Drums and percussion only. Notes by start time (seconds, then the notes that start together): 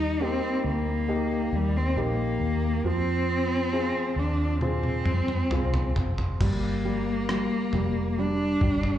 4.61 high tom
4.83 high tom
5.06 mid tom
5.28 mid tom
5.51 mid tom
5.74 mid tom
5.96 floor tom
6.18 floor tom
6.41 kick, floor tom, crash
7.29 cross-stick
7.73 floor tom
8.61 kick
8.83 floor tom